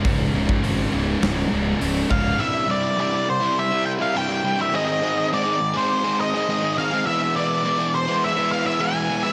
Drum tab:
HH |o---o---o---o---|----------------|----------------|----------------|
SD |--------o-------|----------------|----------------|----------------|
BD |o--o----------o-|----------------|----------------|----------------|